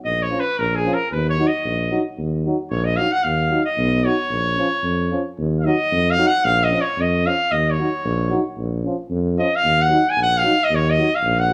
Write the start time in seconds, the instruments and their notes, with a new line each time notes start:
0.05 tuba A#1, trumpet D#5
0.22 trumpet C#5
0.31 euphonium F3 C#4
0.40 trumpet B4
0.58 tuba A#1, trumpet A#4
0.75 trumpet G#4
0.85 euphonium F3 C#4
0.94 trumpet A#4
1.11 tuba D#2, trumpet B4
1.29 trumpet C#5
1.38 euphonium F#3 D#4
1.47 trumpet D#5
1.65 tuba A#1
1.91 euphonium F#3 D#4
2.18 tuba D#2
2.45 euphonium F#3 D#4
2.70 tuba A#1, trumpet C#5
2.85 trumpet D#5
2.96 euphonium F#3 D#4, trumpet F5
3.12 trumpet F#5
3.23 tuba D#2, trumpet F5
3.50 euphonium F#3 D#4
3.65 trumpet D#5
3.77 tuba B1
4.04 euphonium F#3 D#4, trumpet C#5
4.30 tuba A#1
4.57 euphonium F3 C#4
4.83 tuba F2
5.11 euphonium F3 C#4
5.38 tuba D#2
5.59 trumpet F5
5.64 euphonium F#3 D#4, trumpet D#5
5.92 tuba F2
6.10 trumpet F5
6.17 euphonium F#3 D#4
6.27 trumpet F#5
6.44 tuba A#1, trumpet F5
6.63 trumpet D#5
6.70 euphonium F3 C#4
6.81 trumpet C#5
6.98 tuba F2, trumpet D#5
7.24 euphonium F3 C#4, trumpet F5
7.51 tuba D#2, trumpet D#5
7.71 trumpet C#5
7.79 euphonium F#3 D#4
8.05 tuba A#1
8.30 euphonium F#3 D#4
8.57 tuba A#1
8.83 euphonium F3 C#4
9.10 tuba F2
9.38 euphonium F3 C#4, trumpet D#5
9.55 trumpet F5
9.64 tuba D#2
9.82 trumpet F#5
9.88 euphonium F#3 D#4
10.10 trumpet G#5
10.16 tuba A#1
10.22 trumpet F#5
10.37 trumpet F5
10.43 euphonium F#3 D#4
10.64 trumpet D#5
10.70 tuba D#2
10.75 trumpet C#5
10.90 trumpet D#5
10.98 euphonium F#3 D#4
11.15 trumpet F5
11.23 tuba A#1
11.39 trumpet F#5
11.49 euphonium F#3